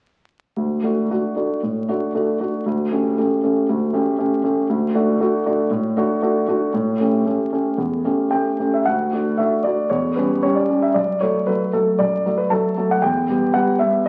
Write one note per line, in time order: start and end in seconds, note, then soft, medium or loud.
0.57 0.83 D2 soft
0.83 1.07 A3 soft
0.83 1.08 D4 soft
0.83 1.08 F#4 soft
1.10 1.34 A3 soft
1.10 1.34 D4 soft
1.10 1.34 F#4 soft
1.36 1.60 A3 soft
1.36 1.60 D4 soft
1.36 1.60 F#4 soft
1.63 1.88 A2 soft
1.88 2.11 A3 soft
1.88 2.12 D4 soft
1.88 2.12 F#4 soft
2.15 2.37 A3 soft
2.15 2.38 D4 soft
2.15 2.38 F#4 soft
2.40 2.63 A3 soft
2.40 2.63 D4 soft
2.40 2.64 F#4 soft
2.66 2.91 D2 soft
2.92 3.14 A3 soft
2.92 3.14 C#4 soft
2.92 3.15 G4 soft
3.18 3.40 A3 soft
3.18 3.40 C#4 soft
3.18 3.40 G4 soft
3.44 3.66 A3 soft
3.44 3.66 C#4 soft
3.44 3.66 G4 soft
3.69 3.92 D2 soft
3.93 4.16 A3 soft
3.93 4.16 C#4 soft
3.93 4.16 G4 soft
4.18 4.41 A3 soft
4.18 4.41 C#4 soft
4.18 4.41 G4 soft
4.44 4.66 A3 soft
4.44 4.66 C#4 soft
4.44 4.67 G4 soft
4.69 4.94 D2 soft
4.95 5.17 A3 soft
4.95 5.18 D4 soft
4.95 5.18 F#4 soft
5.20 5.43 A3 soft
5.20 5.43 D4 soft
5.20 5.43 F#4 soft
5.46 5.69 A3 soft
5.46 5.69 D4 soft
5.46 5.69 F#4 soft
5.71 5.96 A2 soft
5.97 6.20 A3 soft
5.97 6.20 D4 soft
5.97 6.21 F#4 soft
6.22 6.45 A3 soft
6.22 6.46 D4 soft
6.22 6.46 F#4 soft
6.48 6.71 A3 soft
6.48 6.72 D4 soft
6.48 6.72 F#4 soft
6.74 6.99 A2 soft
7.00 7.23 A3 soft
7.00 7.23 C#4 soft
7.00 7.24 G4 soft
7.26 7.49 A3 soft
7.26 7.50 C#4 soft
7.26 7.50 G4 soft
7.52 7.76 A3 soft
7.52 7.76 C#4 soft
7.52 7.76 G4 soft
7.78 8.03 E2 soft
8.04 8.29 A3 soft
8.04 8.29 C#4 soft
8.04 8.29 G4 soft
8.31 8.56 A3 soft
8.31 8.56 C#4 soft
8.31 8.57 G4 soft
8.31 8.72 G5 soft
8.59 8.83 A3 soft
8.59 8.84 C#4 soft
8.59 8.84 G4 soft
8.74 8.86 E5 soft
8.85 9.12 D2 soft
8.85 9.38 F#5 medium
9.13 9.36 A3 soft
9.13 9.37 D4 soft
9.13 9.36 F#4 soft
9.38 9.62 A3 soft
9.38 9.63 D4 soft
9.38 9.63 F#4 soft
9.38 9.64 E5 soft
9.63 9.89 A3 soft
9.63 9.89 D4 soft
9.63 9.89 F#4 soft
9.63 9.90 D5 soft
9.90 10.16 E2 soft
9.90 10.17 C#5 soft
10.16 10.41 G3 soft
10.16 10.41 C#4 soft
10.16 10.41 G4 soft
10.16 10.43 B4 soft
10.43 10.67 G3 soft
10.43 10.67 C#4 soft
10.43 10.67 G4 soft
10.43 10.56 C#5 medium
10.55 10.82 D5 medium
10.69 10.92 G3 soft
10.69 10.93 C#4 soft
10.69 10.93 G4 soft
10.82 10.95 E5 medium
10.94 11.20 F#2 soft
10.94 11.21 D5 medium
11.21 11.45 F#3 soft
11.21 11.45 A3 soft
11.21 11.46 A4 soft
11.21 11.47 C#5 soft
11.47 11.71 F#3 soft
11.47 11.71 A3 soft
11.47 11.71 A4 soft
11.47 11.73 B4 medium
11.73 11.97 F#3 soft
11.73 11.98 A3 soft
11.73 11.99 A4 soft
11.99 12.25 F#2 soft
11.99 12.38 D5 medium
12.26 12.49 F#3 soft
12.26 12.49 A3 soft
12.26 12.49 A4 soft
12.38 12.51 B4 medium
12.50 12.75 F#3 soft
12.50 12.75 A3 soft
12.50 12.75 A4 soft
12.50 12.90 A5 medium
12.77 13.00 F#3 soft
12.77 13.01 A3 soft
12.77 13.01 A4 soft
12.91 13.03 F#5 medium
13.02 13.28 E2 soft
13.02 13.53 G5 medium
13.29 13.52 G3 soft
13.29 13.52 B3 soft
13.29 13.52 G4 soft
13.54 13.78 G3 soft
13.54 13.78 B3 soft
13.54 13.78 G4 soft
13.54 13.80 F#5 medium
13.79 14.03 G3 soft
13.79 14.04 B3 soft
13.79 14.04 G4 soft
13.79 14.05 E5 medium